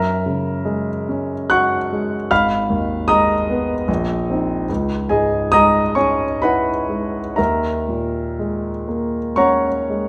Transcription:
Already playing: F#2 A#4 E5 A#5
0.26 C#3
0.65 G#3
1.09 C#4
1.50 F#4 F#5 C#6 F#6
1.93 G#3
2.31 G#1 F5 B5 F6
2.70 D#2
3.08 G#3 D#5 A#5 D#6
3.50 B3
3.88 A#1
4.30 C4 D#4
4.69 C#2
5.09 G#2 G#4 D#5 G#5
5.52 G#3 D#5 A#5 D#6
5.95 C#4 C#5 G#5 C#6
6.42 E4 B4 F#5 B5
6.89 G#3
7.36 D#2 A#4 E5 A#5
7.88 A#2
8.39 G#3
8.88 A#3
9.36 C#4 C#5 F#5 A#5 C#6
9.90 G#3

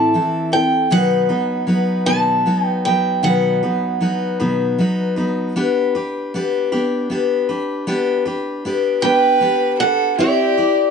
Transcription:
Already playing: A2 E3 C4 E4 A4 A5
0.14 E3 C4 E4 A4
0.52 C4 E4 A4 G5
0.90 B2 D#3 F#3 B3 D#4 B4 F#5
1.29 F#3 B3 D#4 B4
1.67 F#3 B3 D#4 B4
2.06 B2 D#3 F#3 B3 D#4 B4 A5
2.46 F#3 B3 D#4 B4
2.65 G5
2.85 F#3 B3 D#4 B4 G5
3.23 B2 D#3 F#3 B3 D#4 B4 F#5
3.63 F#3 B3 D#4 B4
4.00 F#3 B3 D#4 B4
4.40 B2 D#3 F#3 B3 D#4 B4
4.78 F#3 B3 D#4 B4
5.16 F#3 B3 D#4 B4
5.56 B3 D4 G4 B4
5.95 D4 G4 B4
6.34 B3 D4 G4 B4
6.72 B3 D4 G4 B4
7.10 B3 D4 G4 B4
7.49 D4 G4 B4
7.87 B3 D4 G4 B4
8.25 D4 G4 B4
8.65 B3 D4 G4 B4
9.02 B3 D4 G4 B4 G5
9.41 B3 D4 G4 B4
9.79 D4 G4 A4 B4 F#5
10.17 C4 E4 G4 D5
10.58 E4 G4 D5

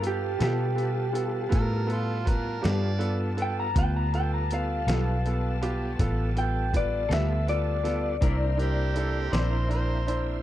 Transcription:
Already playing: G2 G3 B3 F4 F5 A5
0.01 B3 F4 A4, closed hi-hat
0.07 G4
0.39 B2 B3 F4 A4, snare, closed hi-hat
0.43 G3 B3 G4
0.75 B3 F4 A4, closed hi-hat
1.13 B3 F4 A4, closed hi-hat
1.49 A2 B3 F4 A4, kick, closed hi-hat
1.54 A#4
1.87 B3 F4 A4, closed hi-hat
1.92 F4
2.25 B3 F4 A#4 B4, kick, closed hi-hat
2.62 G2 B3 F4 G4 A4 D5, snare, closed hi-hat
2.66 G3 B3 F4
2.99 B3 F4 A4, closed hi-hat
3.37 B3 F4 A4, closed hi-hat
3.42 G5
3.60 A#5
3.73 D2 G3 B3 F4 A4 B4 G5, kick, closed hi-hat
3.79 G5
3.96 A#5
4.14 B3 F4 A4 G5, closed hi-hat
4.34 A#5
4.51 B3 F4 A4 F5, closed hi-hat
4.87 B1 G3 B3 F4 A4, snare, closed hi-hat
5.26 B3 F4 A4, closed hi-hat
5.62 B3 F4 G4, closed hi-hat
5.99 A1 B3 F4 A4, kick, closed hi-hat
6.36 B3 F4 A4 G5, closed hi-hat
6.74 B3 F4 B4 D5, kick, closed hi-hat
7.09 D2 G3 B3 F4 A4, snare, closed hi-hat
7.13 E5
7.48 B3 F4 A4 D5, closed hi-hat
7.83 B3 F4 A4, snare, closed hi-hat
8.21 C2 A#3 C4 D4 E4 A#4 C5 D5 A#5, kick, closed hi-hat
8.57 D4 E4 G4 A#4, closed hi-hat
8.95 D4 E4 A4, closed hi-hat
9.32 A#1 C4 D4 E4 A#4 C5 D5, snare, closed hi-hat
9.69 D4 E4 A#4 C5, closed hi-hat
10.07 D4 E4 C5, closed hi-hat

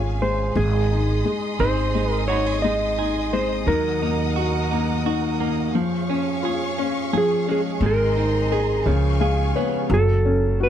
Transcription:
Already playing: G#1 G#3 C#4 F4 G#4 C#5 F5 G#5
0.22 G#3 C5
0.55 G#1 G#3 G#4 D#5 C6 D#6
0.92 D#4
1.25 G#3
1.59 G#1 C4 D#4 C5
1.95 G#3 D#4
2.13 A#4
2.28 D#4 F#4 C#5
2.47 G#4
2.62 G#3 D#4 D#5
2.99 D#4 G#4
3.33 G#3 C4 C5
3.66 D#2 D#3 F#3 A#4 F#5
4.02 A#3 D#4
4.36 F#4
4.71 A#3 D#4
5.06 D#3 F#4
5.40 A#3
5.73 F2 F3 G#4 C#5 F5 C#6
6.10 C#4
6.43 F4 G#4
6.78 C#4
7.13 F3 G#4
7.18 G#4
7.47 G#3 C#4
7.51 G#4
7.81 G#1 D#3 G#3 D#5 A#5 C6
7.86 A#4
8.17 C4 D#4
8.52 G#4
8.85 C#2 C#3 F3 F5 G#5 C#6
9.20 G#3 G#4 F5
9.56 B3 C#5
9.90 F#1 F#3
9.94 A4
10.25 C#4
10.60 F#4 B4

